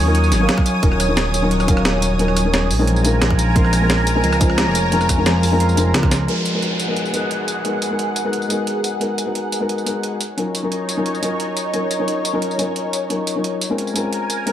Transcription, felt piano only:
0.06 F#3 C#4 D#4 F4 A#4
0.38 F#3 C#4 D#4 F5
0.42 A#4
0.82 F#3 C#4 D#4 F4 A#4
1.08 F#3 C#4 D#4 F4 A#4
1.42 F#3 C#4 D#4 F4 A#4
1.66 F#3 C#4 D#4 F5
1.70 A#4
2.18 F#3 C#4 D#4 F4 A#4
2.44 F#3 C#4 D#4 F4 A#4
2.78 G#3 C4 C#4 F4 A#4
3.03 G#3 C4 C#4 F4
3.07 A#4
3.55 G#3 C4 C#4 F4 A#4
3.80 G#3 C4 C#4 F4 A#4
4.15 G#3 C4 C#4 F4 A#4
4.39 G#3 C#4 F4 C5
4.43 A#4
4.91 G#3 C4 C#4 F4 A#4
5.17 G#3 C4 C#4 F4 A#4
5.51 G#3 C4 C#4 F4 A#4
5.75 G#3 C4 C#4 F4
5.79 A#4
6.27 G#3 B3 D#4 F#4 A#4
6.53 G#3 B3 D#4 F#4 A#4
6.87 G#3 B3 D#4 F#4 A#4
7.11 G#3 B3 D#4 F#4
7.16 A#4
7.64 G#3 B3 D#4 F#4 A#4
7.90 G#3 B3 D#4 F#4 A#4
8.24 G#3 B3 D#4 F#4 A#4
8.48 G#3 B3 D#4 F#4
8.52 A#4
9.00 G#3 B3 D#4 F#4 A#4
9.26 G#3 B3 D#4 F#4 A#4
9.60 G#3 B3 D#4 F#4 A#4
9.85 G#3 B3 D#4 F#4 A#4
10.37 F#3 C#4 D#4 F4 A#4
10.62 F#3 C#4 D#4 F4 A#4
10.96 F#3 C#4 D#4 F4 A#4
11.20 F#3 C#4 D#4 F4
11.25 A#4
11.73 F#3 C#4 D#4 F4 A#4
11.99 F#3 C#4 D#4 F4 A#4
12.33 F#3 C#4 D#4 F4 A#4
12.57 F#3 C#4 D#4 F4
12.61 A#4
13.09 F#3 C#4 D#4 F4 A#4
13.35 F#3 C#4 D#4 F4 A#4
13.69 G#3 C4 C#4 F4 A#4
13.93 G#3 C4 C#4 F4
13.97 A#4
14.46 G#3 C4 C#4 F4 A#4

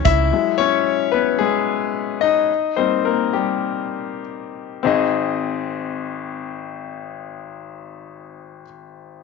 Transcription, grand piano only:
Already playing: F3 C4 C#4 D#4 C5 C#5
0.05 E4 E5
0.32 F#3 G#3 E4
0.58 C#4 C#5
1.12 B3 B4
1.39 G#3 G#4
2.21 D#4 D#5
2.76 G3 A#3 C4 D#4 C5
3.05 A#3 A#4
3.33 G3 G4
4.83 G#1 C4 D#4 G#4
4.87 D#5

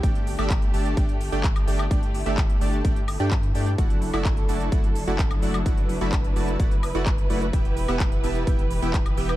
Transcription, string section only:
Already playing: G4
0.03 A3 D4
1.91 E4
3.78 F#3 D4 A4
5.66 B4
7.53 E3 G4

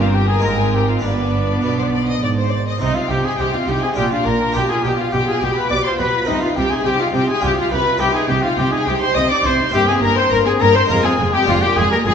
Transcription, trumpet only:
0.00 F4
0.14 G4
0.28 G#4
0.43 A#4
0.59 G#4
0.73 G4
0.88 F4
1.03 D4
2.81 D#4
2.95 F4
3.10 G4
3.25 G#4
3.39 G4
3.54 F4
3.68 G4
3.82 G#4
3.97 G4
4.11 F4
4.25 A#4
4.55 G4
4.68 G#4
4.83 G4
4.97 F4
5.11 G4
5.26 G#4
5.41 G4
5.55 B4
5.70 D5
5.84 C5
5.99 B4
6.27 D#4
6.42 F4
6.56 G4
6.71 G#4
6.85 G4
7.00 F4
7.13 G4
7.27 G#4
7.42 G4
7.57 F4
7.71 B4
8.00 G4
8.14 G#4
8.28 G4
8.42 F4
8.57 G4
8.72 G#4
8.87 G4
9.01 C5
9.15 D#5
9.30 D5
9.45 C5
9.73 G4
9.88 G#4
10.03 A#4
10.18 C5
10.33 A#4
10.47 G#4
10.62 A#4
10.76 C5
10.91 A#4
11.05 G#4
11.33 G4
11.48 F4
11.62 G4
11.77 G#4
11.91 A#4
12.05 G#4

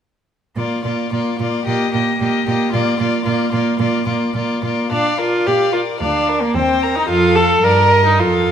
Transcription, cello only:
0.56 A#2
0.85 A#2
1.12 A#2
1.40 A#2
1.67 A#2
1.94 A#2
2.21 A#2
2.47 A#2
2.74 A#2
3.00 A#2
3.26 A#2
3.53 A#2
3.79 A#2
4.06 A#2
4.34 A#2
4.63 A#2
4.91 A#2
5.47 A#2
6.01 D2
6.54 D#2
7.09 F2
7.62 G2
8.18 F2

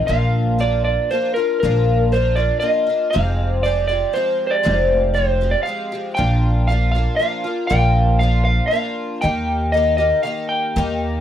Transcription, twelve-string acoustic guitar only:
0.08 A#2 F3 A#3 D4 F4
0.59 F3 A#3 D4 F4
1.11 F3 A#3 D4
1.15 F4
1.36 A#3 D4 F4
1.63 A#2 F3 A#3 D4 F4
2.12 F3 A#3 D4 F4
2.36 A#3 D4 F4
2.61 F3 A#3 D4 F4
2.87 A#3 D4 F4
3.13 F2 C3 F3 G#3 C4 G4
3.64 F3 G#3 C4 G4
3.89 F3 G#3 C4 G4
4.13 F3 G#3 C4
4.17 G4
4.63 F2 C3 F3 G#3 C4 G4
5.14 F3 G#3 C4 G4
5.41 F3 G#3 C4 G4
5.66 F3 G#3 C4 G4
5.92 F3 G#3 C4 G4
6.16 A#2 F3 A#3 D4 F4
6.69 F3 A#3 D4 F4
6.95 A#3 D4 F4
7.19 F3 A#3 D4 F4
7.44 A#3 D4 F4
7.70 A#2 F3 A#3 D4 F4
8.21 F3 A#3 D4 F4
8.71 F3 A#3 D4
8.75 F4
9.22 D#3 A#3 D#4 G4
9.74 D#3 A#3 D#4 G4
9.98 A#3 D#4 G4
10.23 D#3 A#3 D#4 G4
10.76 D#3 A#3 D#4 G4

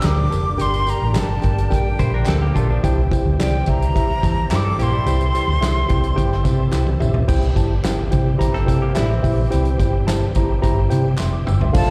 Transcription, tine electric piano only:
0.02 D4 G4 A#4 G5
0.30 D4 G4 A#4 A5
0.57 D4 G4 A#4 G5
0.86 D4 G4 A#4 G5
1.13 D4 G4 A#4 G5
1.42 D4 G4 A#4 G5
1.70 D4 G4 A#4 G5
1.99 D4 G4 A#4 G5
2.27 D4 G4 A#4 G5
2.54 D4 G4 A#4 A5
2.83 E4 G4 C5 G5
3.11 E4 G4 C5 G5
3.39 E4 G4 C5 D5
3.67 E4 G4 C5 E5
3.95 E4 G4 C5 E5
4.23 E4 G4 C5 A5
4.52 E4 G4 C5 G5
4.79 E4 G4 C5 G5
5.07 E4 G4 C5 G5
5.34 E4 G4 C5 G5
5.61 E4 G4 C5 E5
5.89 E4 G4 C5 G5
6.16 E4 G4 C5 G5
6.43 E4 G4 C5 G5
6.71 E4 G4 C5 G5
7.00 E4 G4 C5 E5
7.28 E4 G4 C5 G5
7.56 E4 G4 C5 A5
7.84 E4 G4 C5 G5
8.11 E4 G4 C5 G5
8.39 E4 G4 C5 A#5
8.66 E4 G4 C5 G5
8.94 E4 G4 C5 E5
9.23 E4 G4 C5 E5
9.51 E4 G4 C5 G5
9.79 E4 G4 C5 G5
10.07 E4 G4 C5 A5
10.35 E4 G4 C5 A#5
10.62 E4 G4 C5 A#5
10.90 E4 G4 C5 G5
11.18 E5 C6
11.33 D6
11.47 G5 E6
11.61 E5 C6
11.73 D4 F4 A4 C5 F5

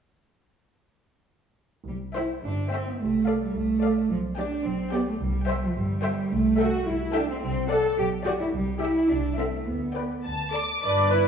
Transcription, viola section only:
2.16 C5
2.72 C5
3.28 A4
3.83 A4
4.38 G4
4.92 G4
5.49 C5
6.04 C5
6.58 A4
7.15 A4
7.70 A4
8.26 G4
8.81 G4
9.38 A4
9.96 B4
10.54 A4
10.82 D5
11.10 B4

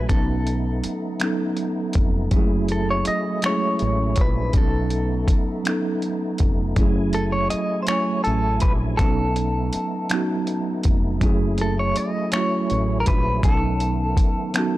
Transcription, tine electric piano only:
Already playing: F#3 A3 C#4 E4 F#4
0.09 F#3 B3 C#4 D#4
0.14 A4
1.20 F#3 B3 C#4 D#4
1.25 A4
2.31 F#3 G#3 C#4
2.35 A3 E4 G#4
3.42 F#3 G#3 C#4
3.47 A3 E4 G#4
4.53 F#3 B3 C#4
4.57 D4 A4
4.64 D#4
5.64 F#3 B3 C#4
5.68 D#4 A4
6.75 F#3 A3 C#4 E4
6.81 G#4
7.87 F#3 A3 C#4
7.91 E4 G#5
8.98 F#3 B3 C#4 D#4
9.04 A4
10.10 F#3 B3 C#4 D#4
10.15 F#4
11.20 F#3 A3 C#4 E4
11.25 G#4
12.32 F#3 A3 C#4 E4
12.37 F#4
13.44 F#3 B3 C#4
13.48 D#4 A4
14.54 F#3 B3 C#4 D#4
14.59 F#4

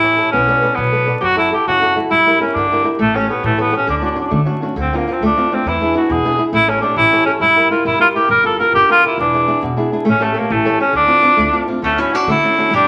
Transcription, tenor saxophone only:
Already playing: E4
0.32 C#4
0.76 B3
1.21 F#4 G4
1.39 E4
1.54 G4
1.68 F#4
2.11 E4
2.41 C#4
2.54 D4
2.99 A3
3.15 C#4
3.29 B3
3.45 A3
3.60 B3
3.76 C#4
3.89 D4
3.97 D4
4.04 D4
4.11 D4
4.20 D4
4.26 D4
4.33 D4
4.79 C4
4.96 A#3
5.13 C4
5.25 D4
5.54 C4
5.68 E4
5.96 F#4
6.11 G#4
6.53 E4
6.69 C#4
6.81 D4
6.97 E4
7.25 C#4
7.41 E4
7.70 F4
7.86 E4
8.01 F4
8.16 G4
8.30 A#4
8.46 A4
8.59 A#4
8.74 G4
8.91 F4
9.06 E4
9.20 D4
10.09 C#4
10.23 A3
10.38 A#3
10.51 A3
10.81 C#4
10.96 D4
11.83 A3
12.00 C#4
12.15 D4
12.30 E4
12.75 D4

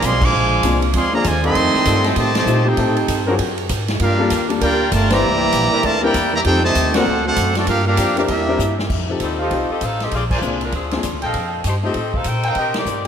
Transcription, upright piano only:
0.64 A#3 C4 D4 F4 G#4
1.13 A#3 C4 D4 F4 G#4
2.47 A3 C4 D#4 F4 G4
2.77 A3 C4 D#4 G4 A4
3.27 F#3 C4 D4 F4 G#4
4.18 G3 A#3 D4 F4 A4
4.49 G3 A#3 D4 F4 A4
6.03 G3 C4 D4 E4 A#4
6.45 G3 C4 D#4 F4 A4
6.95 A#3 C4 D4 F#4 A#4
8.17 C4 D4 E4 G4 A#4
8.48 C4 D4 E4 G4 A#4
9.09 C4 D#4 F4 G4 A4
9.51 C4 D#4 F4 G4 C5
10.42 A#3 C4 D4 F4 G#4
10.91 A#3 C4 D4 F4 G#4
11.83 A3 C4 D#4 F4 G4

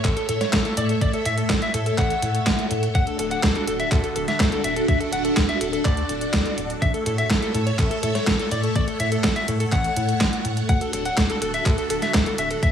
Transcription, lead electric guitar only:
0.05 A4
0.17 A4
0.29 A4
0.41 C#5
0.53 A4
0.65 A4
0.77 D5
0.90 A4
1.02 D5
1.14 A4
1.26 E5
1.38 A4
1.50 A4
1.62 E5
1.74 A4
1.87 A4
1.98 F#5
2.95 F#5
3.07 A4
3.19 A4
3.31 F#5
3.44 A4
3.56 A4
3.68 A4
3.80 E5
3.92 A4
4.04 A4
4.16 A4
4.28 E5
4.40 A4
4.52 A4
4.64 E5
4.76 A4
4.88 E5
5.00 A4
5.13 F#5
5.25 A4
5.37 A4
5.49 E5
5.61 A4
5.73 A4
5.85 D5
6.82 E5
6.94 A4
7.06 A4
7.18 E5
7.30 A4
7.42 A4
7.55 A4
7.67 C#5
7.79 A4
7.91 A4
8.03 A4
8.15 C#5
8.27 A4
8.40 A4
8.52 D5
8.64 A4
8.76 D5
8.88 A4
9.00 E5
9.12 A4
9.24 A4
9.36 E5
9.48 A4
9.60 A4
9.72 F#5
10.69 F#5
10.81 A4
10.93 A4
11.06 F#5
11.18 A4
11.30 A4
11.42 A4
11.54 E5
11.66 A4
11.78 A4
11.90 A4
12.02 E5
12.15 A4
12.27 A4
12.39 E5
12.51 A4
12.63 E5

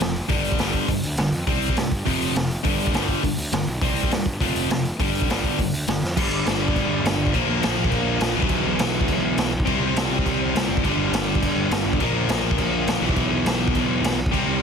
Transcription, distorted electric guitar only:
0.01 F2 C3
0.29 G2 D3 G3
0.59 G2 D3 G3
0.90 G2 D3
1.19 G2 D3
1.47 C3 G3 C4
1.78 C3 G3
2.05 F2 C3 F3
2.34 F2 C3
2.63 G2 D3 G3
2.93 G2 D3 G3
3.23 G2 D3
3.53 G2 D3
3.82 C3 G3 C4
4.12 C3 G3
4.41 F2 C3 F3
4.71 F2 C3
4.99 G2 D3 G3
5.30 G2 D3 G3
5.60 G2 D3
5.88 G2 D3
6.17 G2 D3 G3
7.33 A#2 F3 A#3
8.33 E2 B2 E3
9.65 C3 G3 C4
10.83 G2 D3 G3
11.99 A#2 F3 A#3
13.01 E2 B2 E3
14.31 C3 G3 C4

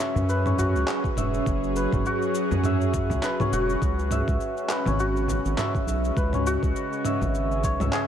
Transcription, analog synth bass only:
0.16 F#2
0.74 C#2
1.16 E1
1.46 F#1
1.92 F#1
2.51 F#2
3.10 C#2
3.52 E1
3.81 C#2
4.28 C#2
4.86 G#1
5.45 G#1
5.86 B1
6.17 C#2
6.62 C#2
7.21 G#1
7.63 B1
7.79 C#2

